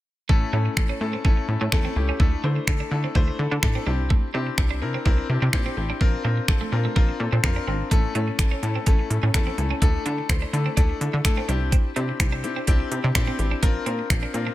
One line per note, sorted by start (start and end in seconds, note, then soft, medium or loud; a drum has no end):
0.29 0.45 A1 medium
0.29 0.49 A3 loud
0.29 0.39 A3 medium
0.29 0.50 C#4 medium
0.29 0.50 E4 medium
0.29 0.50 A4 loud
0.29 kick loud
0.53 0.69 A2 medium
0.53 0.73 A3 medium
0.53 0.63 C#4 medium
0.53 0.73 C#4 medium
0.53 0.73 E4 medium
0.53 0.74 A4 medium
0.66 muted clean electric guitar stroke soft
0.77 0.92 A1 medium
0.77 0.97 A3 medium
0.77 0.97 C#4 medium
0.77 0.97 E4 medium
0.77 0.97 A4 medium
0.77 finger snap loud
0.77 kick loud
0.89 0.98 C#4 medium
1.01 1.16 A2 loud
1.01 1.21 A3 medium
1.01 1.21 C#4 medium
1.01 1.21 E4 medium
1.01 1.21 A4 medium
1.01 muted clean electric guitar stroke soft
1.13 1.22 C4 medium
1.24 1.40 A1 loud
1.24 1.45 A3 loud
1.24 1.45 C#4 loud
1.24 1.35 C#4 medium
1.24 1.45 E4 medium
1.24 1.45 A4 loud
1.24 kick loud
1.37 muted clean electric guitar stroke soft
1.48 1.57 A2 medium
1.48 1.68 A3 medium
1.48 1.69 C#4 medium
1.48 1.69 E4 medium
1.48 1.69 A4 medium
1.61 1.68 A2 loud
1.61 1.70 C#4 medium
1.72 1.88 E2 loud
1.72 1.92 A3 loud
1.72 1.92 C#4 loud
1.72 1.92 E4 medium
1.72 1.93 A4 loud
1.72 finger snap loud
1.72 kick loud
1.85 1.94 C4 medium
1.96 2.12 C#2 medium
1.96 2.16 A3 medium
1.96 2.16 C#4 medium
1.96 2.16 E4 medium
1.96 2.16 G4 medium
1.96 muted clean electric guitar stroke soft
2.09 2.18 C#4 medium
2.20 2.35 D2 loud
2.20 2.30 A3 medium
2.20 2.40 A3 loud
2.20 2.40 D4 medium
2.20 2.40 E4 medium
2.20 2.40 A4 loud
2.20 kick loud
2.44 2.59 D3 medium
2.44 2.64 A3 medium
2.44 2.54 D4 medium
2.44 2.64 D4 medium
2.44 2.64 E4 medium
2.44 2.64 C5 medium
2.56 muted clean electric guitar stroke soft
2.67 2.83 D2 loud
2.67 2.88 A3 medium
2.67 2.88 D4 medium
2.67 2.88 E4 medium
2.67 2.88 A4 medium
2.67 finger snap loud
2.67 kick loud
2.80 2.89 D4 medium
2.91 3.07 D3 medium
2.91 3.11 A3 medium
2.91 3.12 D4 medium
2.91 3.12 E4 medium
2.91 3.12 A4 loud
2.91 muted clean electric guitar stroke soft
3.04 3.13 C4 medium
3.15 3.31 D2 loud
3.15 3.35 A3 loud
3.15 3.25 D4 medium
3.15 3.35 D4 medium
3.15 3.35 E4 loud
3.15 3.35 C5 loud
3.15 kick loud
3.28 muted clean electric guitar stroke soft
3.39 3.47 D3 loud
3.39 3.59 A3 medium
3.39 3.59 D4 medium
3.39 3.59 E4 medium
3.39 3.59 A4 medium
3.51 3.59 D3 loud
3.51 3.60 D4 medium
3.63 3.78 A2 medium
3.63 3.83 A3 loud
3.63 3.83 D4 loud
3.63 3.83 E4 medium
3.63 3.83 A4 loud
3.63 finger snap loud
3.63 muted clean electric guitar stroke soft
3.63 kick loud
3.75 3.84 C4 medium
3.86 4.18 C2 loud
3.86 4.27 C4 medium
3.86 3.96 D4 medium
3.86 4.27 D4 medium
3.86 4.27 E4 medium
3.86 4.27 G4 medium
4.10 4.20 A3 medium
4.10 kick loud
4.34 4.50 C3 loud
4.34 4.54 C4 medium
4.34 4.44 D4 medium
4.34 4.54 D4 medium
4.34 4.54 E4 medium
4.34 4.55 G4 medium
4.47 muted clean electric guitar stroke soft
4.58 4.83 C2 loud
4.58 4.78 C4 medium
4.58 4.78 D4 medium
4.58 4.78 E4 medium
4.58 4.78 G4 medium
4.58 finger snap loud
4.58 kick loud
4.71 4.79 D4 medium
4.82 4.97 C3 medium
4.82 5.02 C4 medium
4.82 5.02 D4 medium
4.82 5.02 E4 medium
4.82 5.02 A#4 medium
4.82 muted clean electric guitar stroke soft
4.94 5.03 C4 medium
5.05 5.21 C2 loud
5.05 5.26 C4 loud
5.05 5.26 D4 loud
5.05 5.16 D4 medium
5.05 5.26 E4 loud
5.05 5.26 A#4 loud
5.05 kick loud
5.18 muted clean electric guitar stroke soft
5.29 5.38 C3 loud
5.29 5.49 C4 medium
5.29 5.50 D4 medium
5.29 5.50 E4 medium
5.29 5.50 G4 medium
5.42 5.49 C3 loud
5.42 5.51 D4 medium
5.53 5.69 A#2 loud
5.53 5.73 C4 loud
5.53 5.73 D4 medium
5.53 5.73 E4 loud
5.53 5.73 G4 loud
5.53 finger snap loud
5.53 kick medium
5.66 5.75 C4 medium
5.77 5.93 A1 medium
5.77 5.97 C4 medium
5.77 5.97 D4 medium
5.77 5.97 E4 medium
5.77 5.97 G4 medium
5.77 muted clean electric guitar stroke soft
5.90 5.99 D4 medium
6.01 6.16 A#1 loud
6.01 6.11 A#3 medium
6.01 6.21 C4 loud
6.01 6.21 D4 medium
6.01 6.21 F4 medium
6.01 6.21 A#4 loud
6.01 kick loud
6.24 6.40 A#2 loud
6.24 6.45 C4 medium
6.24 6.45 D4 medium
6.24 6.35 D4 medium
6.24 6.45 F4 medium
6.24 6.45 A#4 medium
6.37 muted clean electric guitar stroke soft
6.48 6.64 A#1 loud
6.48 6.68 C4 medium
6.48 6.69 D4 medium
6.48 6.69 F4 medium
6.48 6.69 A4 medium
6.48 finger snap loud
6.48 kick loud
6.61 6.70 A3 medium
6.72 6.88 A#2 loud
6.72 6.92 C4 medium
6.72 6.92 D4 medium
6.72 6.92 F4 medium
6.72 6.93 A#4 medium
6.72 muted clean electric guitar stroke soft
6.85 6.94 A3 medium
6.96 7.12 A#1 loud
6.96 7.06 A#3 medium
6.96 7.16 C4 loud
6.96 7.16 D4 loud
6.96 7.16 F4 loud
6.96 7.16 A#4 loud
6.96 kick loud
7.09 muted clean electric guitar stroke soft
7.19 7.28 A#2 loud
7.19 7.40 C4 medium
7.19 7.40 D4 medium
7.19 7.40 F4 medium
7.19 7.40 A4 medium
7.33 7.40 A#2 medium
7.33 7.41 C4 medium
7.43 7.59 F2 loud
7.43 7.64 C4 loud
7.43 7.64 D4 medium
7.43 7.64 F4 medium
7.43 7.64 A#4 loud
7.43 finger snap loud
7.43 muted clean electric guitar stroke soft
7.43 kick loud
7.56 7.65 D4 medium
7.67 7.83 G#1 medium
7.67 7.87 C4 medium
7.67 7.77 C4 medium
7.67 7.88 D4 medium
7.67 7.88 F4 medium
7.67 7.88 A#4 medium
7.91 8.07 A1 loud
7.91 8.11 A3 loud
7.91 8.01 A3 medium
7.91 8.11 C#4 medium
7.91 8.11 E4 loud
7.91 8.12 A4 loud
7.91 kick loud
7.91 closed hi-hat medium
8.15 8.31 A2 medium
8.15 8.35 A3 medium
8.15 8.35 C#4 medium
8.15 8.25 C#4 medium
8.15 8.35 E4 medium
8.15 8.35 A4 medium
8.15 closed hi-hat soft
8.28 muted clean electric guitar stroke soft
8.38 8.54 A1 loud
8.38 8.59 A3 medium
8.38 8.59 C#4 medium
8.38 8.59 E4 medium
8.38 8.59 A4 medium
8.38 finger snap loud
8.38 kick loud
8.38 closed hi-hat medium
8.52 8.60 C#4 medium
8.62 8.78 A2 loud
8.62 8.83 A3 medium
8.62 8.83 C#4 medium
8.62 8.83 E4 medium
8.62 8.83 A4 medium
8.62 muted clean electric guitar stroke soft
8.62 closed hi-hat soft
8.75 8.84 C4 medium
8.86 9.02 A1 loud
8.86 9.07 A3 loud
8.86 9.07 C#4 loud
8.86 8.96 C#4 medium
8.86 9.07 E4 medium
8.86 9.07 A4 loud
8.86 kick loud
8.86 closed hi-hat medium
8.99 muted clean electric guitar stroke soft
9.10 9.19 A2 loud
9.10 9.30 A3 medium
9.10 9.30 C#4 medium
9.10 9.30 E4 medium
9.10 9.31 A4 medium
9.10 closed hi-hat medium
9.23 9.30 A2 loud
9.23 9.32 C#4 medium
9.34 9.50 E2 loud
9.34 9.54 A3 loud
9.34 9.54 C#4 medium
9.34 9.54 E4 medium
9.34 9.54 A4 loud
9.34 finger snap loud
9.34 kick medium
9.34 closed hi-hat medium
9.47 9.56 C4 medium
9.58 9.73 C#2 medium
9.58 9.78 A3 medium
9.58 9.78 C#4 medium
9.58 9.78 E4 medium
9.58 9.78 A4 medium
9.58 muted clean electric guitar stroke soft
9.58 closed hi-hat soft
9.71 9.79 C#4 medium
9.82 9.97 D2 loud
9.82 10.02 A3 loud
9.82 9.92 A3 medium
9.82 10.02 D4 loud
9.82 10.02 E4 medium
9.82 10.02 A4 loud
9.82 kick loud
9.82 closed hi-hat medium
10.05 10.21 D3 medium
10.05 10.26 A3 medium
10.05 10.26 D4 medium
10.05 10.16 D4 medium
10.05 10.26 E4 medium
10.05 10.26 A4 medium
10.05 closed hi-hat soft
10.18 muted clean electric guitar stroke soft
10.29 10.45 D2 loud
10.29 10.49 A3 medium
10.29 10.50 D4 medium
10.29 10.50 E4 medium
10.29 10.50 C5 medium
10.29 finger snap loud
10.29 kick loud
10.29 closed hi-hat medium
10.42 10.51 D4 medium
10.53 10.69 D3 medium
10.53 10.73 A3 medium
10.53 10.73 D4 medium
10.53 10.73 E4 medium
10.53 10.73 A4 medium
10.53 muted clean electric guitar stroke soft
10.53 closed hi-hat soft
10.66 10.75 C4 medium
10.77 10.93 D2 loud
10.77 10.97 A3 loud
10.77 10.87 D4 medium
10.77 10.97 D4 loud
10.77 10.97 E4 medium
10.77 10.97 A4 loud
10.77 kick loud
10.77 closed hi-hat medium
10.90 muted clean electric guitar stroke soft
11.01 11.09 D3 loud
11.01 11.21 A3 medium
11.01 11.21 D4 medium
11.01 11.21 E4 medium
11.01 11.21 A4 medium
11.01 closed hi-hat medium
11.13 11.21 D3 loud
11.13 11.22 D4 medium
11.24 11.40 A2 loud
11.24 11.45 A3 loud
11.24 11.45 D4 loud
11.24 11.45 E4 medium
11.24 11.45 A4 loud
11.24 finger snap loud
11.24 muted clean electric guitar stroke soft
11.24 kick loud
11.24 closed hi-hat medium
11.37 11.46 C4 medium
11.48 11.79 C2 loud
11.48 11.89 C4 medium
11.48 11.89 D4 medium
11.48 11.58 D4 medium
11.48 11.89 E4 medium
11.48 11.89 G4 loud
11.48 closed hi-hat soft
11.72 11.82 C4 medium
11.72 kick loud
11.72 closed hi-hat medium
11.96 12.12 C3 loud
11.96 12.16 C4 medium
11.96 12.16 D4 medium
11.96 12.06 D4 medium
11.96 12.16 E4 medium
11.96 12.16 G4 medium
11.96 closed hi-hat soft
12.09 muted clean electric guitar stroke soft
12.20 12.45 C2 loud
12.20 12.40 C4 medium
12.20 12.40 D4 medium
12.20 12.40 E4 medium
12.20 12.40 G4 medium
12.20 finger snap loud
12.20 kick loud
12.20 closed hi-hat medium
12.32 12.41 D4 medium
12.44 12.59 C3 medium
12.44 12.64 C4 medium
12.44 12.64 D4 medium
12.44 12.64 E4 medium
12.44 12.64 G4 medium
12.44 muted clean electric guitar stroke soft
12.44 closed hi-hat soft
12.56 12.65 C4 medium
12.67 12.83 C2 loud
12.67 12.88 C4 loud
12.67 12.88 D4 loud
12.67 12.77 D4 medium
12.67 12.88 E4 loud
12.67 12.88 G4 loud
12.67 kick loud
12.67 closed hi-hat medium
12.80 muted clean electric guitar stroke soft
12.91 13.00 C3 loud
12.91 13.11 C4 medium
12.91 13.11 D4 medium
12.91 13.11 E4 medium
12.91 13.12 G4 medium
12.91 closed hi-hat medium
13.04 13.11 C3 loud
13.04 13.13 D4 medium
13.15 13.31 A#2 medium
13.15 13.35 C4 loud
13.15 13.35 D4 loud
13.15 13.35 E4 medium
13.15 13.35 G4 loud
13.15 finger snap loud
13.15 kick loud
13.15 closed hi-hat medium
13.28 13.36 C4 medium
13.39 13.54 A1 medium
13.39 13.59 C4 medium
13.39 13.59 D4 medium
13.39 13.59 E4 medium
13.39 13.59 G4 medium
13.39 muted clean electric guitar stroke soft
13.39 closed hi-hat soft
13.51 13.60 D4 medium
13.62 13.78 A#1 loud
13.62 13.73 A#3 medium
13.62 13.83 C4 loud
13.62 13.83 D4 loud
13.62 13.83 F4 loud
13.62 13.83 A#4 loud
13.62 kick loud
13.62 closed hi-hat medium
13.86 14.02 A#2 medium
13.86 13.96 C4 medium
13.86 14.07 C4 medium
13.86 14.07 D4 medium
13.86 14.07 F4 medium
13.86 14.07 A#4 medium
13.86 closed hi-hat soft
13.99 muted clean electric guitar stroke soft
14.10 14.26 A#1 loud
14.10 14.30 C4 medium
14.10 14.30 D4 medium
14.10 14.31 F4 medium
14.10 14.31 A#4 medium
14.10 finger snap loud
14.10 kick loud
14.10 closed hi-hat medium
14.23 14.32 D4 medium
14.34 14.50 A#2 medium
14.34 14.54 C4 medium
14.34 14.54 D4 medium
14.34 14.54 F4 medium
14.34 14.54 A#4 medium
14.34 muted clean electric guitar stroke soft
14.34 closed hi-hat soft
14.47 14.54 D4 medium